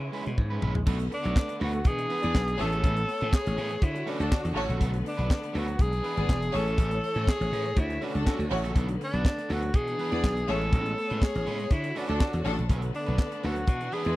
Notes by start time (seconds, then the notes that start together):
Already playing: C#3 G#3 B3 E4 C#5
0.02 muted clean electric guitar stroke
0.12 G#3 C#4 E4 B4, open hi-hat
0.26 B2, muted clean electric guitar stroke, closed hi-hat
0.38 G#2, muted clean electric guitar stroke, kick, high tom
0.50 G#3 C#4 E4 B4
0.62 A#1 G#3 C#4 E4 B4, mid tom
0.75 muted clean electric guitar stroke, floor tom
0.86 B1 D3 A3 B3 D4 F#4 B4, kick, crash
0.99 muted clean electric guitar stroke, closed hi-hat
1.11 D4, muted clean electric guitar stroke, open hi-hat
1.23 B1 A3 D4 F#4 C#5, closed hi-hat
1.36 kick, snare, clap
1.48 muted clean electric guitar stroke, closed hi-hat
1.60 D2 A3 D4 F#4 B4, open hi-hat
1.64 F#4
1.73 muted clean electric guitar stroke, closed hi-hat
1.84 E3 B3 D4 G#4, muted clean electric guitar stroke, kick, closed hi-hat
1.98 muted clean electric guitar stroke, closed hi-hat
2.09 E3 B3 D4 B4, open hi-hat
2.23 E2 B3 G#4 D5, muted clean electric guitar stroke, closed hi-hat
2.34 B1, muted clean electric guitar stroke, kick, snare, clap
2.47 muted clean electric guitar stroke, closed hi-hat
2.58 A1 E3 A3 C#4 G#4 A4 C#5, snare, open hi-hat
2.72 E3 A3 C#4 G#4, closed hi-hat
2.83 A1 E3 A3 C#4 G#4, kick, closed hi-hat
2.96 muted clean electric guitar stroke, closed hi-hat
3.08 muted clean electric guitar stroke, open hi-hat
3.21 A2 E3 A3 C#4 A4, closed hi-hat
3.33 G#4, kick, snare, clap
3.45 A1, muted clean electric guitar stroke, closed hi-hat
3.56 A2 E3 A3 C#4 G#4, open hi-hat
3.70 muted clean electric guitar stroke, closed hi-hat
3.82 D3 E4 F#4, kick, closed hi-hat
3.95 muted clean electric guitar stroke, closed hi-hat
4.06 A3 C#4 D4 F#4 B4, open hi-hat
4.19 D2 D4 A4, muted clean electric guitar stroke, closed hi-hat
4.31 muted clean electric guitar stroke, kick, snare, clap
4.44 E2, muted clean electric guitar stroke, closed hi-hat
4.55 A1 A3 C#4 F#4 A4 C#5, snare, open hi-hat
4.68 A#1 A3 C#4 F#4 A4, closed hi-hat
4.79 B1 F#3 A3 B3 D4 A4, kick, closed hi-hat
4.93 muted clean electric guitar stroke, closed hi-hat
5.04 D4, muted clean electric guitar stroke, open hi-hat
5.17 B1 F#3 B3 D4 B4, closed hi-hat
5.30 kick, snare, clap
5.42 muted clean electric guitar stroke, closed hi-hat
5.53 D2 F#3 B3 D4 A4, open hi-hat
5.57 F#4
5.67 muted clean electric guitar stroke, closed hi-hat
5.79 B1 E3 G#3 D4 G#4, muted clean electric guitar stroke, kick, closed hi-hat
5.92 muted clean electric guitar stroke, closed hi-hat
6.03 E3 B3 D4 B4, open hi-hat
6.17 G#1 B3 G#4 D5, muted clean electric guitar stroke, closed hi-hat
6.28 E1, muted clean electric guitar stroke, kick, snare, clap
6.41 muted clean electric guitar stroke, closed hi-hat
6.52 A1 E3 A3 C#4 G#4 A4 C#5, snare, open hi-hat
6.66 E3 A3 C#4 G#4, closed hi-hat
6.77 A1 E3 A3 C#4 G#4, kick, closed hi-hat
6.91 muted clean electric guitar stroke, closed hi-hat
7.03 muted clean electric guitar stroke, open hi-hat
7.16 A2 E3 A3 C#4 A4, closed hi-hat
7.27 G#4, kick, snare, clap
7.40 A1, muted clean electric guitar stroke, closed hi-hat
7.52 A2 E3 A3 C#4 G#4, open hi-hat
7.65 muted clean electric guitar stroke, closed hi-hat
7.77 D2 D3 E4 F#4, muted clean electric guitar stroke, kick, closed hi-hat
7.89 muted clean electric guitar stroke, closed hi-hat
8.01 A3 C#4 D4 F#4 B4, open hi-hat
8.14 C#2 D4 A4, muted clean electric guitar stroke, closed hi-hat
8.26 A3 C#4 F#4 A4, kick, snare, clap
8.39 D2, muted clean electric guitar stroke, closed hi-hat
8.51 A1 A3 F#4 C#5, muted clean electric guitar stroke, snare, open hi-hat
8.64 A#1 A3 C#4 F#4 A4, closed hi-hat
8.75 B1 F#3 A3 B3 D4 A4, kick, closed hi-hat
8.88 muted clean electric guitar stroke, closed hi-hat
9.01 D4, muted clean electric guitar stroke, open hi-hat
9.13 B1 F#3 B3 D4 B4, closed hi-hat
9.25 kick, snare, clap
9.38 muted clean electric guitar stroke, closed hi-hat
9.49 D2 F#3 B3 D4 F#4 A4, open hi-hat
9.63 muted clean electric guitar stroke, closed hi-hat
9.74 B2 E3 B3 D4 G#4, muted clean electric guitar stroke, kick, closed hi-hat
9.87 muted clean electric guitar stroke, closed hi-hat
9.98 E3 B3 D4 B4, open hi-hat
10.11 E2 B3 G#4 D5, muted clean electric guitar stroke, closed hi-hat
10.23 B1, muted clean electric guitar stroke, kick, snare, clap
10.37 muted clean electric guitar stroke, closed hi-hat
10.48 A1 G#3 A3 C#4 E4 G#4 A4 C#5, snare, open hi-hat
10.61 G#3 C#4 E4 G#4, closed hi-hat
10.72 A1 G#3 C#4 E4 G#4, kick, closed hi-hat
10.86 muted clean electric guitar stroke, closed hi-hat
10.97 muted clean electric guitar stroke, open hi-hat
11.10 A2 G#3 C#4 E4 B4, closed hi-hat
11.22 G#4, kick, snare, clap
11.35 A1, muted clean electric guitar stroke, closed hi-hat
11.46 A2 G#3 C#4 E4 G#4, open hi-hat
11.59 muted clean electric guitar stroke, closed hi-hat
11.70 D3 E4 F#4, muted clean electric guitar stroke, kick, closed hi-hat
11.84 muted clean electric guitar stroke, closed hi-hat
11.95 A3 C#4 D4 F#4 B4, open hi-hat
12.08 D2 D4 A4, muted clean electric guitar stroke, closed hi-hat
12.20 muted clean electric guitar stroke, kick, snare, clap
12.33 E2, muted clean electric guitar stroke, closed hi-hat
12.44 A1 A3 C#4 D4 F#4 A4, snare, open hi-hat
12.58 A#1, muted clean electric guitar stroke, closed hi-hat
12.69 B1 D3 F#3 A3 B3 D4 A4, kick, closed hi-hat
12.82 muted clean electric guitar stroke, closed hi-hat
12.93 D4, muted clean electric guitar stroke, open hi-hat
13.06 B1 F#3 B3 D4 B4, closed hi-hat
13.18 kick, snare, clap
13.32 muted clean electric guitar stroke, closed hi-hat
13.43 D2 F#3 B3 D4 F#4 A4, open hi-hat
13.56 muted clean electric guitar stroke, closed hi-hat
13.67 E3 B3 D4, muted clean electric guitar stroke, kick, closed hi-hat
13.81 muted clean electric guitar stroke, closed hi-hat
13.92 E3 B3 D4 G#4 B4, open hi-hat
14.05 E2 G#3 E4 B4, muted clean electric guitar stroke, closed hi-hat